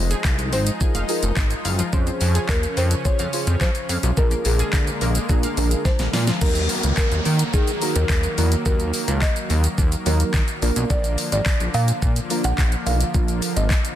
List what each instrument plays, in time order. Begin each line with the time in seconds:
Already playing: analog synth bass F1, analog synth pad F3 G#3 D#4, synth stab D#4 F4 G#4 C5, marimba D#5
0.11 synth pluck G#4, closed hi-hat, shaker
0.25 analog synth bass C2, synth pluck F5, kick, clap, shaker
0.39 closed hi-hat, shaker
0.53 analog synth bass G#1, synth pluck C4, marimba C5, open hi-hat, shaker
0.67 closed hi-hat, shaker
0.81 synth stab D#4 F4 G#4 A#4, synth pluck G#4, kick, shaker
0.95 analog synth bass F1, synth pluck F5, closed hi-hat, shaker
1.09 synth stab D#4 F4 G#4 A#4, open hi-hat, shaker
1.23 analog synth bass F1, closed hi-hat, shaker
1.37 analog synth bass G#1, synth pluck D#4, kick, clap, shaker
1.51 closed hi-hat, shaker
1.65 analog synth bass F#1, synth pluck F5, open hi-hat, shaker
1.79 synth pluck F3, closed hi-hat, shaker
1.93 analog synth bass F2, analog synth pad C#3 C#4, synth pluck F3, synth stab C#4 F4 G#4 C5, kick, shaker
2.07 synth pluck C4, closed hi-hat, shaker
2.21 analog synth bass F2, open hi-hat, shaker
2.35 synth pluck G#4, closed hi-hat, shaker
2.49 analog synth bass D#2, marimba A#4, synth pluck F5, kick, clap, shaker
2.63 closed hi-hat, shaker
2.77 analog synth bass F2, synth pluck C4, marimba C5, open hi-hat, shaker
2.91 closed hi-hat, shaker
3.05 synth stab C#4 F4 G#4 C5, synth pluck G#4, marimba C#5, kick, shaker
3.19 analog synth bass F2, synth pluck F5, closed hi-hat, shaker
3.33 synth stab C#4 F4 G#4 C5, open hi-hat, shaker
3.47 analog synth bass F2, closed hi-hat, shaker
3.61 analog synth bass F3, synth pluck C#4, marimba C5, kick, clap, shaker
3.75 closed hi-hat, shaker
3.89 analog synth bass F2, synth pluck F5, open hi-hat, shaker
4.03 analog synth bass B1, synth pluck F3, closed hi-hat, shaker
4.17 analog synth bass A#1, analog synth pad D3 G#3 A#3, synth pluck F3, synth stab D4 F4 G#4 A#4, marimba A#4, kick, shaker
4.31 synth pluck A#3, closed hi-hat, shaker
4.45 analog synth bass A#1, marimba G#4, open hi-hat, shaker
4.59 synth pluck G#4, closed hi-hat, shaker
4.73 analog synth bass D2, synth pluck F5, kick, clap, shaker
4.87 closed hi-hat, shaker
5.01 analog synth bass A#1, synth pluck A#3, open hi-hat, shaker
5.15 closed hi-hat, shaker
5.29 analog synth bass A#2, synth stab D4 F4 G#4 A#4, synth pluck G#4, kick, shaker
5.43 synth pluck F5, closed hi-hat, shaker
5.57 analog synth bass A#1, synth stab D4 F4 G#4 A#4, open hi-hat, shaker
5.71 closed hi-hat, shaker
5.85 analog synth bass A#1, synth pluck D4, marimba C5, kick, snare, shaker
5.99 analog synth bass A#1, snare, closed hi-hat, shaker
6.13 analog synth bass A#2, synth pluck F5, snare, open hi-hat, shaker
6.27 synth pluck F3, snare, closed hi-hat, shaker
6.41 analog synth bass D#2, analog synth pad D#3 F#3 A#3, synth stab F#3 A#3 D#4 F#4 A#4, marimba A#4, kick, crash, downlifter, shaker
6.55 closed hi-hat, shaker
6.69 open hi-hat, shaker
6.83 analog synth bass C#2, closed hi-hat, shaker
6.97 marimba A#4, kick, clap, shaker
7.12 analog synth bass D#2, closed hi-hat, shaker
7.25 analog synth bass D#3, open hi-hat, shaker
7.39 closed hi-hat, shaker
7.54 analog synth bass D#3, marimba G#4, kick, shaker
7.68 closed hi-hat, shaker
7.81 synth stab F#3 A#3 D#4 F#4 A#4, open hi-hat, shaker
7.96 analog synth bass D#2, marimba A#4, closed hi-hat, shaker
8.09 analog synth bass D#2, kick, clap, shaker
8.23 closed hi-hat, shaker
8.37 analog synth bass E2, synth stab F#3 A#3 D#4 F#4 A#4, open hi-hat, shaker
8.52 closed hi-hat, shaker
8.66 analog synth bass D#2, synth stab F#3 A#3 D#4 F#4 A#4, marimba A#4, kick, shaker
8.80 closed hi-hat, shaker
8.94 open hi-hat, shaker
9.08 analog synth bass C#2, closed hi-hat, shaker
9.22 marimba D#5, kick, clap, shaker
9.36 closed hi-hat, shaker
9.50 analog synth bass D#2, open hi-hat, shaker
9.64 closed hi-hat, shaker
9.78 analog synth bass D#2, kick, shaker
9.92 closed hi-hat, shaker
10.06 analog synth bass D#2, synth stab F#3 A#3 D#4 F#4 A#4, open hi-hat, shaker
10.20 closed hi-hat, shaker
10.34 analog synth bass D#3, kick, clap, shaker
10.48 closed hi-hat, shaker
10.62 analog synth bass A#1, analog synth pad D3 F3 A#3, synth stab F3 A#3 D4 F4 A#4, open hi-hat, shaker
10.76 analog synth bass B1, closed hi-hat, shaker
10.90 analog synth bass A#1, marimba D5, kick, shaker
11.04 closed hi-hat, shaker
11.18 open hi-hat, shaker
11.32 analog synth bass G#1, marimba D5, closed hi-hat, shaker
11.46 kick, clap, shaker
11.60 analog synth bass A#1, closed hi-hat, shaker
11.74 analog synth bass A#2, marimba F5, open hi-hat, shaker
11.88 closed hi-hat, shaker
12.02 analog synth bass A#2, kick, shaker
12.16 closed hi-hat, shaker
12.30 synth stab F3 A#3 D4 F4 A#4, open hi-hat, shaker
12.44 analog synth bass A#1, marimba F#5, closed hi-hat, shaker
12.58 analog synth bass A#1, kick, clap, shaker
12.72 closed hi-hat, shaker
12.86 analog synth bass B1, synth stab F3 A#3 D4 F4 A#4, marimba F5, open hi-hat, shaker
13.01 closed hi-hat, shaker
13.14 analog synth bass A#1, synth stab F3 A#3 D4 F4 A#4, kick, shaker
13.28 closed hi-hat, shaker
13.42 open hi-hat, shaker
13.57 analog synth bass G#1, marimba D#5, closed hi-hat, shaker
13.70 kick, clap, shaker
13.85 closed hi-hat, shaker